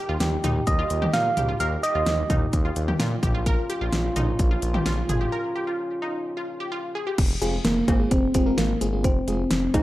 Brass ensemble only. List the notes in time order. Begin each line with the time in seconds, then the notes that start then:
Already playing: A#2 D#3 G3 D#4 G4
3.23 A#2 C#3 F3 C#4 F4